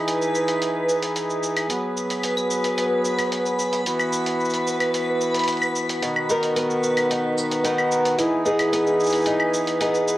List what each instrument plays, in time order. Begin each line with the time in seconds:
Already playing: harmonium E3 D#4 G#4, synth texture B4 B6
0.08 closed hi-hat, cabasa
0.22 cabasa
0.35 cabasa
0.48 closed hi-hat, cabasa
0.62 closed hi-hat, cabasa
0.89 cabasa
1.03 closed hi-hat, cabasa
1.16 closed hi-hat, cabasa
1.30 cabasa
1.43 cabasa
1.57 closed hi-hat, cabasa, claves
1.69 harmonium F#3 B3, closed hi-hat, cabasa
1.97 cabasa
2.10 closed hi-hat, cabasa
2.23 closed hi-hat, cabasa
2.37 cabasa, claves
2.51 cabasa
2.64 closed hi-hat, cabasa
2.78 closed hi-hat, cabasa
3.05 cabasa
3.19 closed hi-hat, cabasa, claves
3.32 closed hi-hat, cabasa
3.46 cabasa
3.59 cabasa
3.73 closed hi-hat, cabasa
3.86 harmonium E3 B3 F#4, closed hi-hat, cabasa
3.99 cabasa, claves
4.13 cabasa
4.26 closed hi-hat, cabasa
4.40 cabasa
4.45 cabasa
4.50 cabasa
4.54 closed hi-hat, cabasa
4.67 cabasa
4.80 closed hi-hat, cabasa, claves
4.94 closed hi-hat, cabasa
5.21 cabasa
5.34 closed hi-hat, cabasa
5.39 closed hi-hat
5.44 closed hi-hat
5.48 closed hi-hat, cabasa
5.53 closed hi-hat
5.57 closed hi-hat
5.62 cabasa, claves
5.76 cabasa
5.89 closed hi-hat, cabasa
6.02 steel-string acoustic guitar B2, harmonium D#3 F#4, closed hi-hat, cabasa
6.16 claves
6.30 steel-string acoustic guitar B3 D#4 A#4, cabasa
6.43 closed hi-hat, cabasa
6.56 steel-string acoustic guitar B3, closed hi-hat, cabasa
6.70 cabasa
6.83 cabasa
6.97 closed hi-hat, cabasa, claves
7.10 steel-string acoustic guitar D#4, closed hi-hat, cabasa
7.38 cabasa
7.51 closed hi-hat, cabasa
7.64 steel-string acoustic guitar B3 D#4 A#4, closed hi-hat, cabasa
7.78 cabasa, claves
7.92 cabasa
8.05 closed hi-hat, cabasa
8.18 steel-string acoustic guitar E3, harmonium E3 D#4 G#4, closed hi-hat, cabasa
8.45 steel-string acoustic guitar B3 D#4 G#4, cabasa
8.59 closed hi-hat, cabasa, claves
8.72 steel-string acoustic guitar B3, closed hi-hat, cabasa
8.87 cabasa
9.00 cabasa
9.03 cabasa
9.06 cabasa
9.09 closed hi-hat, cabasa
9.13 cabasa
9.15 cabasa
9.17 cabasa
9.20 cabasa
9.21 cabasa
9.24 closed hi-hat, cabasa
9.26 steel-string acoustic guitar D#4, cabasa
9.40 claves
9.54 cabasa
9.67 closed hi-hat, cabasa
9.80 steel-string acoustic guitar B3 D#4 G#4, closed hi-hat, cabasa
9.94 cabasa
10.08 cabasa